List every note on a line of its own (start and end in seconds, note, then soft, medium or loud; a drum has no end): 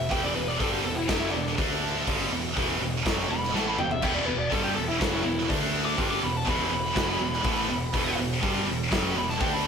0.00 0.10 E5 medium
0.11 0.34 E1 medium
0.11 0.34 E2 loud
0.11 0.35 B2 loud
0.11 0.35 E3 loud
0.11 0.23 G5 medium
0.11 kick loud
0.11 open hi-hat medium
0.24 0.34 D5 medium
0.35 0.58 E1 medium
0.35 0.55 E2 medium
0.35 0.55 B2 medium
0.35 0.48 B4 medium
0.48 0.60 D5 medium
0.59 0.83 G1 medium
0.59 0.83 G2 medium
0.59 0.83 D3 loud
0.59 0.84 G3 medium
0.59 0.73 A4 medium
0.59 kick loud
0.59 open hi-hat medium
0.73 0.84 G4 medium
0.83 1.07 E1 medium
0.83 1.03 E2 medium
0.83 1.04 B2 medium
0.83 0.97 A4 medium
0.95 1.08 E4 medium
1.08 1.31 F#1 medium
1.08 1.32 F#2 medium
1.08 1.33 C#3 loud
1.08 1.33 F#3 loud
1.08 1.20 D4 medium
1.08 kick loud
1.08 snare loud
1.08 open hi-hat medium
1.20 1.31 E4 medium
1.31 1.55 E1 medium
1.31 1.53 E2 medium
1.31 1.53 B2 medium
1.31 1.56 D4 medium
1.47 snare soft
1.57 2.04 D2 loud
1.57 2.06 D3 loud
1.57 2.06 A3 loud
1.57 2.06 D4 loud
1.57 kick loud
1.57 open hi-hat medium
2.06 2.30 G1 loud
2.06 2.30 G2 medium
2.06 2.31 D3 loud
2.06 2.31 G3 loud
2.06 kick loud
2.06 open hi-hat medium
2.31 2.54 E1 medium
2.31 2.51 E2 medium
2.31 2.51 B2 medium
2.56 2.79 E1 medium
2.56 2.80 E2 medium
2.56 2.80 B2 loud
2.56 2.80 E3 medium
2.56 kick loud
2.56 open hi-hat medium
2.80 3.03 E1 medium
2.80 3.00 E2 medium
2.80 3.00 B2 medium
3.05 3.27 F#1 medium
3.05 3.29 F#2 medium
3.05 3.29 C#3 medium
3.05 3.29 F#3 medium
3.05 kick loud
3.05 snare loud
3.05 open hi-hat medium
3.28 3.51 E1 medium
3.28 3.49 E2 medium
3.28 3.49 B2 medium
3.28 3.54 B5 loud
3.43 snare soft
3.53 3.76 A1 medium
3.53 3.77 A2 loud
3.53 3.77 E3 loud
3.53 3.78 A3 loud
3.53 3.68 A5 medium
3.53 snare medium
3.68 3.79 B5 medium
3.78 4.01 E1 medium
3.78 3.98 E2 medium
3.78 3.98 B2 medium
3.78 3.91 G5 medium
3.78 mid tom medium
3.91 4.03 E5 medium
3.91 floor tom loud
4.02 4.26 E1 medium
4.02 4.26 E2 medium
4.02 4.27 B2 loud
4.02 4.27 E3 loud
4.02 4.15 G5 loud
4.02 kick loud
4.02 crash loud
4.14 4.26 D5 medium
4.26 4.50 E1 medium
4.26 4.47 E2 medium
4.26 4.47 B2 medium
4.26 4.38 B4 medium
4.39 4.51 D5 medium
4.52 4.75 G1 medium
4.52 4.75 G2 medium
4.52 4.76 D3 loud
4.52 4.76 G3 medium
4.52 4.63 A4 medium
4.52 kick medium
4.52 open hi-hat medium
4.63 4.75 G4 medium
4.75 4.99 E1 medium
4.75 4.96 E2 medium
4.75 4.96 B2 medium
4.75 4.88 A4 loud
4.87 4.99 E4 medium
4.99 5.24 F#1 loud
4.99 5.24 F#2 medium
4.99 5.24 C#3 medium
4.99 5.25 F#3 loud
4.99 5.11 D4 medium
4.99 kick loud
4.99 snare loud
4.99 open hi-hat medium
5.11 5.22 E4 medium
5.23 5.47 E1 medium
5.23 5.45 E2 medium
5.23 5.45 B2 medium
5.23 5.48 E4 medium
5.39 snare soft
5.49 5.96 D2 loud
5.49 5.97 D3 loud
5.49 5.98 A3 loud
5.49 5.98 D4 loud
5.49 kick loud
5.49 open hi-hat medium
5.85 5.97 D6 loud
5.98 6.21 G1 medium
5.98 6.22 G2 medium
5.98 6.22 D3 loud
5.98 6.23 G3 medium
5.98 kick loud
5.98 open hi-hat medium
6.11 6.23 D6 loud
6.22 6.45 E1 medium
6.22 6.43 E2 medium
6.22 6.43 B2 medium
6.22 6.37 B5 medium
6.37 6.49 A5 loud
6.47 6.70 E1 medium
6.47 6.70 E2 loud
6.47 6.70 B2 loud
6.47 6.72 E3 loud
6.47 6.72 B5 medium
6.47 kick loud
6.47 open hi-hat medium
6.70 6.94 E1 medium
6.70 6.91 E2 medium
6.70 6.91 B2 medium
6.70 8.15 B5 loud
6.95 7.19 F#1 loud
6.95 7.20 F#2 medium
6.95 7.20 C#3 medium
6.95 7.20 F#3 loud
6.95 kick loud
6.95 snare loud
6.95 open hi-hat medium
7.20 7.43 E1 medium
7.20 7.40 E2 medium
7.20 7.40 B2 medium
7.33 snare soft
7.44 7.68 A1 loud
7.44 7.69 A2 loud
7.44 7.69 E3 loud
7.44 7.69 A3 loud
7.44 kick loud
7.44 open hi-hat medium
7.69 7.92 E1 medium
7.69 7.90 E2 medium
7.69 7.90 B2 medium
7.94 8.17 E1 loud
7.94 8.17 E2 loud
7.94 8.17 B2 loud
7.94 8.18 E3 loud
7.94 kick loud
7.94 open hi-hat medium
8.17 8.41 E1 medium
8.17 8.38 E2 medium
8.17 8.38 B2 medium
8.42 8.66 G1 medium
8.42 8.66 G2 medium
8.42 8.67 D3 loud
8.42 8.67 G3 loud
8.42 kick loud
8.42 open hi-hat medium
8.66 8.89 E1 medium
8.66 8.87 E2 medium
8.66 8.87 B2 medium
8.91 9.15 F#1 loud
8.91 9.15 F#2 medium
8.91 9.15 C#3 medium
8.91 9.16 F#3 loud
8.91 kick loud
8.91 snare loud
8.91 open hi-hat medium
9.15 9.38 E1 medium
9.15 9.35 E2 medium
9.15 9.36 B2 medium
9.15 9.29 B5 loud
9.29 9.41 A5 medium
9.29 snare soft
9.40 9.67 D2 loud
9.40 9.67 D3 loud
9.40 9.67 A3 loud
9.40 9.67 D4 loud
9.40 9.53 G5 loud
9.40 kick loud
9.40 open hi-hat medium
9.53 9.64 B5 loud